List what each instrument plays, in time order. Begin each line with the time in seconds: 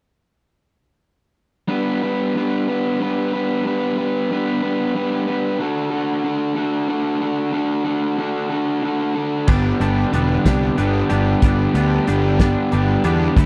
1.68 overdriven electric guitar G3 B3 D4 B4
2.02 overdriven electric guitar B3 D4 B4
2.35 overdriven electric guitar G3 B3 D4 B4
2.68 overdriven electric guitar B3 D4 B4
3.00 overdriven electric guitar G3 B3 D4 B4
3.33 overdriven electric guitar B3 D4 B4
3.64 overdriven electric guitar G3 B3 D4 B4
3.98 overdriven electric guitar B3 D4 B4
4.30 overdriven electric guitar G3 B3 D4 B4
4.63 overdriven electric guitar B3 D4 B4
4.94 overdriven electric guitar G3 B3 D4 B4
5.27 overdriven electric guitar B3 D4 B4
5.59 overdriven electric guitar D3 D4 F#4 A4
5.91 overdriven electric guitar D4 F#4 A4
6.24 overdriven electric guitar D3 D4 F#4 A4
6.56 overdriven electric guitar D4 F#4 A4
6.88 overdriven electric guitar D3 D4 F#4 A4
7.21 overdriven electric guitar D4 F#4 A4
7.53 overdriven electric guitar D3 D4 F#4 A4
7.84 overdriven electric guitar D4 F#4 A4
8.18 overdriven electric guitar D3 D4 F#4 A4
8.50 overdriven electric guitar D4 F#4 A4
8.82 overdriven electric guitar D3 D4 F#4 A4
9.16 overdriven electric guitar D4 F#4 A4
9.47 picked electric bass G1, overdriven electric guitar G2 D3 G3 B3 D4 G4, kick, crash
9.80 picked electric bass G1, overdriven electric guitar G2 D3 G3 B3 D4 G4, closed hi-hat
10.11 picked electric bass E1, overdriven electric guitar G2 D3 G3 B3 D4 G4, closed hi-hat
10.45 picked electric bass C2, overdriven electric guitar G2 D3 G3 B3 D4 G4, kick, snare, closed hi-hat
10.77 picked electric bass G1, overdriven electric guitar G2 D3 G3 B3 D4 G4, closed hi-hat
11.09 picked electric bass G1, overdriven electric guitar G2 D3 G3 B3 D4 G4, closed hi-hat
11.42 picked electric bass G1, overdriven electric guitar G2 D3 G3 B3 D4 G4, kick, closed hi-hat
11.74 picked electric bass D2, overdriven electric guitar G2 D3 G3 B3 D4 G4, closed hi-hat
12.07 picked electric bass G1, overdriven electric guitar G2 D3 G3 B3 D4 G4, closed hi-hat
12.40 overdriven electric guitar G2 D3 G3 B3 D4 G4, kick, snare, closed hi-hat
12.72 picked electric bass G1, overdriven electric guitar G2 D3 G3 B3 D4 G4, closed hi-hat
13.04 picked electric bass E2, overdriven electric guitar G2 D3 G3 B3 D4 G4, closed hi-hat
13.36 picked electric bass D2, overdriven electric guitar D3 A3 D4 F#4, clean electric guitar F#3 E4, kick, closed hi-hat